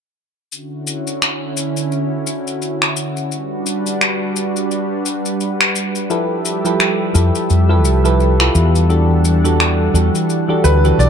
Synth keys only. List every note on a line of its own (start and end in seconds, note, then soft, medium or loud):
6.10 6.61 F3 medium
6.10 6.61 E4 medium
6.10 6.61 G4 medium
6.10 6.61 A4 medium
6.10 6.61 B4 medium
6.65 7.11 F3 medium
6.65 7.12 E4 medium
6.65 7.12 G4 medium
6.65 7.12 A4 medium
6.65 7.12 B4 medium
7.14 7.65 F3 medium
7.14 7.65 E4 medium
7.14 7.65 G4 medium
7.14 7.66 A4 medium
7.14 7.66 B4 medium
7.69 8.00 F3 medium
7.69 8.00 E4 medium
7.69 8.00 G4 medium
7.69 8.00 A4 medium
7.69 8.01 B4 medium
8.04 8.35 F3 medium
8.04 8.35 E4 medium
8.04 8.35 G4 medium
8.04 8.35 A4 medium
8.04 8.36 B4 medium
8.40 8.86 E4 medium
8.40 8.86 F4 medium
8.40 8.86 G4 medium
8.40 8.87 A4 medium
8.40 8.87 B4 medium
8.89 9.40 E3 medium
8.89 9.40 D4 medium
8.89 9.40 F#4 medium
8.89 9.40 G4 medium
8.89 9.40 A4 medium
9.44 9.91 E3 medium
9.44 9.91 D4 medium
9.44 9.91 F#4 medium
9.44 9.91 G4 medium
9.44 9.91 A4 medium
9.94 10.44 E3 medium
9.94 10.45 D4 medium
9.94 10.45 F#4 medium
9.94 10.45 G4 medium
9.94 10.45 A4 medium
10.48 10.79 E3 medium
10.48 10.79 D4 medium
10.48 10.79 F#4 medium
10.48 10.80 G4 medium
10.48 10.80 A4 medium
10.84 11.09 E3 medium
10.84 11.09 D4 medium
10.84 11.09 F#4 medium
10.84 11.09 G4 medium
10.84 11.09 A4 medium